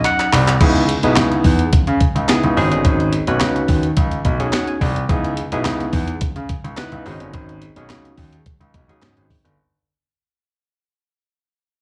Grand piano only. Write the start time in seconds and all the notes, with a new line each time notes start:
0.33 C2
0.61 C#2
1.03 B1
1.17 C#2
1.45 E2
1.73 C#3
1.87 C#3
2.16 C#2
2.44 C#2
2.57 G#1
2.72 G1
2.85 G#1
3.28 B1
3.41 C#2
3.69 D#2
3.97 C#2
4.25 B1
4.81 C2
5.09 C#2
5.52 B1
5.65 C#2
5.93 E2
6.22 C#3
6.36 C#3
6.64 C#2
6.92 C#2
7.06 G#1
7.20 G1
7.34 G#1
7.76 B1
7.90 C#2
8.18 D#2
8.61 C#2
8.74 B1
8.88 C#2
9.02 G#2
9.17 G#1
9.45 G1